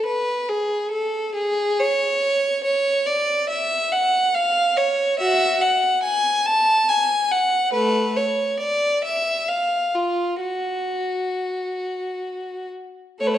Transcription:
0.07 B4
0.49 G#4
0.91 A4
1.35 G#4
1.80 C#5
2.65 C#5
3.07 D5
3.50 E5
3.92 F#5
4.35 F5
4.78 C#5
5.20 F#4 E5
5.62 F#5
6.03 G#5
6.46 A5
6.89 G#5
7.31 F#5
7.73 A3 B4
8.17 C#5
8.60 D5
9.04 E5
9.49 F5
9.95 F4
10.41 F#4
13.20 A3 C#5
13.27 B4
13.35 C#5

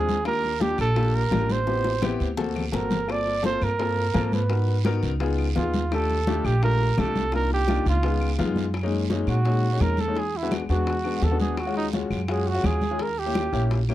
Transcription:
Already playing: D#2 G#3 C4 D4 F4 G#4
0.09 high conga, short guiro
0.25 A#3 D4 F4 G4 A#4, high bongo, high conga, long guiro, claves
0.43 high bongo, high conga
0.60 A#3 D4 F4 G4, high bongo, high conga, short guiro
0.78 A#1 A4, high bongo, high conga, short guiro, claves
0.96 A#3 D4 F4 G4, high bongo, high conga, long guiro
1.14 A#4, high bongo, high conga
1.31 A1 A#3 D4 F4 G4, high bongo, low bongo, high conga, short guiro, claves
1.50 C5, high conga, short guiro
1.66 B3 C4 E4 G4, high bongo, high conga, long guiro
1.84 high bongo, high conga
2.02 B3 C4 E4 G4, low bongo, high conga, short guiro, claves
2.20 D2, high conga, short guiro
2.37 A#3 C4 F#4 A4, low bongo, high conga, long guiro
2.56 low bongo, high conga, claves
2.72 G1 A#3 C4 F#4 A4 A#4, low bongo, high conga, short guiro
2.91 low bongo, high conga, short guiro
3.08 A#3 C4 F4 A4 D5, high bongo, high conga, long guiro, claves
3.26 high bongo, high conga
3.42 A#3 C4 F4 A4 C5, high bongo, high conga, short guiro
3.61 G2 A#4, high bongo, high conga, short guiro, claves
3.79 A#3 C4 F4 A4, high bongo, high conga, long guiro
3.96 high bongo, high conga
4.14 G#2 A#3 C4 F4 A4, high bongo, low bongo, high conga, short guiro, claves
4.32 B4, high conga, short guiro
4.50 B3 D#4 F#4 A#4, high bongo, high conga, long guiro
4.67 high bongo, high conga
4.85 B3 D#4 F#4 A#4, high bongo, high conga, short guiro, claves
5.03 C#2, high bongo, high conga, short guiro
5.20 B3 D#4 F4 G#4, high bongo, high conga, long guiro
5.38 high bongo, high conga, claves
5.56 D#2 B3 D#4 F4 G#4, high bongo, low bongo, high conga, short guiro
5.74 high conga, short guiro
5.92 A3 D4 F4 G4 A4, high bongo, high conga, long guiro, claves
6.10 high bongo, high conga
6.27 A3 D4 F4 G4, high bongo, high conga, short guiro
6.44 A#1 G4, high bongo, high conga, short guiro, claves
6.62 A3 D4 F4 G4 A#4, high bongo, high conga, long guiro
6.80 high bongo, high conga
6.97 C2 A3 D4 F4 G4 A4, high bongo, low bongo, high conga, short guiro, claves
7.16 high conga, short guiro
7.32 A#3 D4 D#4 F4 A#4, high bongo, high conga, long guiro
7.51 G4, high bongo, high conga
7.68 A#3 D4 D#4 F4, high bongo, high conga, short guiro, claves
7.85 C#2 F4, high bongo, high conga, short guiro
8.03 G#3 B3 D#4 F4, high bongo, high conga, long guiro
8.21 high bongo, high conga, claves
8.38 F#2 G#3 B3 D#4 F4, high bongo, low bongo, high conga, short guiro
8.56 high conga, short guiro
8.74 high bongo, high conga, long guiro, claves
8.83 G#3 A#3 C#4 D#4
8.92 high bongo, high conga
9.10 G#3 A#3 C#4 D#4, high bongo, high conga, short guiro
9.27 A#2 F#4, high bongo, high conga, short guiro, claves
9.45 G#3 A#3 C#4 D#4, high bongo, high conga, long guiro
9.63 high bongo, high conga
9.73 G#3 A#3 C#4 D#4
9.80 E2 A#4, high bongo, low bongo, high conga, short guiro, claves
9.97 A4, high conga, short guiro
10.08 G#3 A#3 C#4 D#4
10.15 G#4, high bongo, high conga, long guiro
10.34 E4, high bongo, high conga
10.43 G#3 B3 D4 F#4
10.51 high bongo, high conga, short guiro, claves
10.69 E2 G#3 B3 D4 F#4, high bongo, high conga, short guiro
10.87 high bongo, high conga, long guiro
11.04 G#3 B3 D4 F#4, high bongo, high conga, claves
11.22 D#2 A4, high bongo, low bongo, high conga, short guiro
11.31 G#3 B3 D4 F#4
11.40 G#4, high conga, short guiro
11.57 F#4, high bongo, high conga, long guiro, claves
11.66 G#3 C#4 F4 F#4
11.76 D#4, high bongo, high conga
11.93 G#3 C#4 F4 F#4, high bongo, high conga, short guiro
12.10 F#2, high bongo, high conga, short guiro, claves
12.28 G#3 C#4 F4 F#4 G#4, high bongo, high conga, long guiro
12.46 F#4, high bongo, high conga
12.54 G#3 C#4 F4 F#4
12.64 D#2 G#4, high bongo, low bongo, high conga, short guiro, claves
12.81 high conga, short guiro
12.91 G#3 C#4 F4 G#4
12.99 A#4, high bongo, high conga, long guiro
13.17 G4, high bongo, high conga
13.26 A#3 C#4 E4 G4
13.35 high bongo, high conga, short guiro, claves
13.52 A#1 A#3 C#4 E4 G4, high bongo, high conga, short guiro
13.71 high bongo, high conga, long guiro
13.88 A#3 C#4 E4 G4, high bongo, high conga, claves

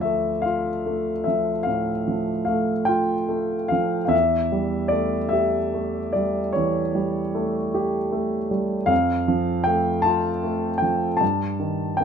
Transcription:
Already playing: D2 F3 D5
0.01 A3 E5
0.42 F5
0.46 F4
0.86 A3
1.24 F3 E5
1.63 A2 F5
2.08 F3
2.45 A3 F5
2.85 F4 G5
3.29 A3
3.68 F3 F5
4.05 E2 E5 F5
4.52 G3
4.88 A3 D5
5.29 G4 E5
5.74 A3
6.13 G3 D5
6.53 E3 C#5
6.95 G3
7.35 A3
7.74 G4
8.12 A3
8.51 G3
8.86 F2 F5
9.28 F3
9.64 A3 G5
10.02 F4 A5
10.44 A3
10.78 G5
10.82 F3
11.17 A5
11.21 G2
11.60 D#3
11.97 A#3 D#4 G5

